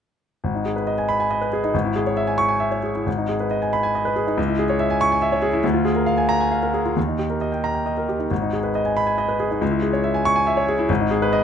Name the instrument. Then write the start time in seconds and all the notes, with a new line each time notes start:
grand piano
0.44 G#1
0.55 D#4
0.65 G#4
0.76 B4
0.87 D#5
0.98 G#5
1.08 B5
1.20 G#5
1.31 D#5
1.41 B4
1.53 G#4
1.64 D#4
1.74 G#1
1.85 E4
1.96 G#4
2.07 C#5
2.17 E5
2.27 G#5
2.38 C#6
2.49 G#5
2.60 E5
2.71 C#5
2.83 G#4
2.95 E4
3.06 G#1
3.18 D#4
3.29 G#4
3.40 B4
3.51 D#5
3.62 G#5
3.73 B5
3.83 G#5
3.95 D#5
4.05 B4
4.16 G#4
4.27 D#4
4.37 C#2
4.48 E4
4.59 G#4
4.70 C#5
4.79 E5
4.90 G#5
5.01 C#6
5.12 G#5
5.22 E5
5.32 C#5
5.42 G#4
5.53 E4
5.64 D2
5.74 F4
5.85 G#4
5.95 A#4
6.06 F5
6.18 G#5
6.29 A#5
6.40 G#5
6.51 F5
6.63 A#4
6.74 G#4
6.85 F4
6.96 D#2
7.08 D#4
7.19 G4
7.30 A#4
7.41 D#5
7.52 G5
7.64 A#5
7.75 G5
7.86 D#5
7.98 A#4
8.09 G4
8.19 D#4
8.31 G#1
8.42 D#4
8.53 G#4
8.64 B4
8.75 D#5
8.85 G#5
8.97 B5
9.07 G#5
9.18 D#5
9.28 B4
9.40 G#4
9.51 D#4
9.61 C#2
9.71 E4
9.82 G#4
9.93 C#5
10.03 E5
10.14 G#5
10.25 C#6
10.36 G#5
10.47 E5
10.57 C#5
10.69 G#4
10.79 E4
10.89 G#1
11.01 D#4
11.11 G#4
11.22 B4
11.33 D#5